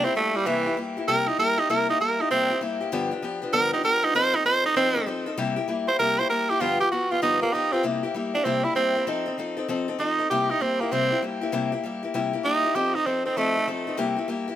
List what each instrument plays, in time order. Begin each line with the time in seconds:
0.03 steel-string acoustic guitar A#3 E4 G4, tenor saxophone C4
0.15 steel-string acoustic guitar G3 A#3 E4 G4, tenor saxophone A3
0.34 tenor saxophone G3, steel-string acoustic guitar A#3 E4 G4
0.46 steel-string acoustic guitar C3 G3 A#3 E4 G4, tenor saxophone E3
0.66 steel-string acoustic guitar A#3 E4 G4
0.77 steel-string acoustic guitar G3 A#3 E4 G4
0.97 steel-string acoustic guitar A#3 E4 G4
1.08 steel-string acoustic guitar C3 G3 A#3 E4 G4, tenor saxophone A#4
1.27 steel-string acoustic guitar A#3 E4 G4, tenor saxophone D#4
1.38 steel-string acoustic guitar G3 A#3 E4 G4, tenor saxophone A#4
1.58 steel-string acoustic guitar A#3 E4 G4, tenor saxophone D#4
1.69 steel-string acoustic guitar C3 G3 A#3 E4 G4, tenor saxophone A#4
1.88 steel-string acoustic guitar A#3 E4 G4, tenor saxophone D#4
2.00 steel-string acoustic guitar G3 A#3 E4 G4, tenor saxophone A#4
2.20 steel-string acoustic guitar A#3 E4 G4, tenor saxophone D#4
2.31 steel-string acoustic guitar C3 G3 A#3 E4 G4, tenor saxophone C4
2.50 steel-string acoustic guitar A#3 E4 G4
2.61 steel-string acoustic guitar G3 A#3 E4 G4
2.81 steel-string acoustic guitar A#3 E4 G4
2.92 steel-string acoustic guitar G2 D3 F3 B3 D4 G4
3.11 steel-string acoustic guitar F3 B3 D4 G4
3.22 steel-string acoustic guitar F3 B3 D4 G4
3.42 steel-string acoustic guitar F3 B3 D4 G4
3.52 steel-string acoustic guitar G2 D3 F3 B3 D4 G4, tenor saxophone A#4
3.73 steel-string acoustic guitar F3 B3 D4 G4, tenor saxophone D#4
3.83 steel-string acoustic guitar F3 B3 D4 G4, tenor saxophone A#4
4.02 steel-string acoustic guitar F3 B3 D4 G4, tenor saxophone D#4
4.15 steel-string acoustic guitar F3 C4 D#4 A4, tenor saxophone C5
4.34 steel-string acoustic guitar D#4 A4, tenor saxophone D#4
4.44 steel-string acoustic guitar F3 C4 D#4 A4, tenor saxophone C5
4.64 steel-string acoustic guitar C4 D#4 A4, tenor saxophone D#4
4.76 steel-string acoustic guitar F3 C4 D#4 A4, tenor saxophone C4
4.96 steel-string acoustic guitar C4 D#4 A4
5.06 steel-string acoustic guitar F3 C4 D#4 A4
5.26 steel-string acoustic guitar C4 D#4 A4
5.37 steel-string acoustic guitar C3 G3 A#3 E4 G4
5.56 steel-string acoustic guitar A#3 E4 G4
5.68 steel-string acoustic guitar G3 A#3 E4 G4
5.87 steel-string acoustic guitar A#3 E4 G4, tenor saxophone C5
5.99 steel-string acoustic guitar C3 G3 A#3 E4 G4, tenor saxophone A#4
6.19 steel-string acoustic guitar A#3 E4 G4, tenor saxophone C5
6.29 steel-string acoustic guitar G3 A#3 E4 G4, tenor saxophone A#4
6.49 steel-string acoustic guitar A#3 E4 G4, tenor saxophone G4
6.60 steel-string acoustic guitar G2 D3 F3 B3 F4 G4, tenor saxophone F4
6.79 steel-string acoustic guitar F3 B3 F4 G4, tenor saxophone G4
6.91 steel-string acoustic guitar F3 B3 F4 G4, tenor saxophone F#4
7.11 steel-string acoustic guitar F3 B3 F4 G4, tenor saxophone F4
7.22 steel-string acoustic guitar G2 D3 F3 B3 F4 G4, tenor saxophone D#4
7.41 steel-string acoustic guitar F3 B3 F4 G4, tenor saxophone A#3
7.53 steel-string acoustic guitar F3 B3 F4 G4, tenor saxophone D#4
7.72 steel-string acoustic guitar F3 B3 F4 G4, tenor saxophone C4
7.83 steel-string acoustic guitar C3 G3 A#3 E4 G4
8.03 steel-string acoustic guitar A#3 E4 G4
8.14 steel-string acoustic guitar G3 A#3 E4 G4
8.34 steel-string acoustic guitar A#3 E4 G4, tenor saxophone D4
8.44 steel-string acoustic guitar C3 G3 A#3 E4 G4, tenor saxophone C4
8.64 steel-string acoustic guitar A#3 E4 G4, tenor saxophone E4
8.75 steel-string acoustic guitar G3 A#3 E4 G4, tenor saxophone C4
8.95 steel-string acoustic guitar A#3 E4 G4
9.07 steel-string acoustic guitar F3 C4 D#4 A4
9.26 steel-string acoustic guitar C4 D#4 A4
9.38 steel-string acoustic guitar F3 C4 D#4 A4
9.57 steel-string acoustic guitar C4 D#4 A4
9.68 steel-string acoustic guitar F3 C4 D#4 A4
9.88 steel-string acoustic guitar C4 D#4 A4
9.98 steel-string acoustic guitar F3 C4 D#4 A4, tenor saxophone D#4
10.19 steel-string acoustic guitar C4 D#4 A4
10.30 steel-string acoustic guitar C3 G3 A#3 E4 G4, tenor saxophone G4
10.50 steel-string acoustic guitar A#3 E4 G4, tenor saxophone D#4
10.60 steel-string acoustic guitar G3 A#3 E4 G4, tenor saxophone C4
10.81 tenor saxophone A#3, steel-string acoustic guitar A#3 E4 G4
10.92 steel-string acoustic guitar C3 G3 A#3 E4 G4, tenor saxophone C4
11.11 steel-string acoustic guitar A#3 E4 G4
11.22 steel-string acoustic guitar G3 A#3 E4 G4
11.41 steel-string acoustic guitar A#3 E4 G4
11.52 steel-string acoustic guitar C3 G3 A#3 E4 G4
11.72 steel-string acoustic guitar A#3 E4 G4
11.83 steel-string acoustic guitar G3 A#3 E4 G4
12.03 steel-string acoustic guitar A#3 E4 G4
12.14 steel-string acoustic guitar C3 G3 A#3 E4 G4
12.33 steel-string acoustic guitar A#3 E4 G4
12.44 steel-string acoustic guitar G3 A#3 E4 G4, tenor saxophone D#4
12.64 steel-string acoustic guitar A#3 E4 G4
12.75 steel-string acoustic guitar F3 C4 D#4 A4, tenor saxophone G4
12.95 steel-string acoustic guitar C4 A4, tenor saxophone D#4
13.06 steel-string acoustic guitar F3 C4 D#4 A4, tenor saxophone C4
13.26 tenor saxophone C4, steel-string acoustic guitar C4 D#4 A4
13.37 steel-string acoustic guitar F3 C4 D#4 A4, tenor saxophone A3
13.56 steel-string acoustic guitar C4 D#4 A4
13.67 steel-string acoustic guitar F3 C4 D#4 A4
13.87 steel-string acoustic guitar C4 D#4 A4
13.97 steel-string acoustic guitar C3 G3 A#3 E4 G4
14.16 steel-string acoustic guitar A#3 E4 G4
14.28 steel-string acoustic guitar G3 A#3 E4 G4
14.48 steel-string acoustic guitar A#3 E4 G4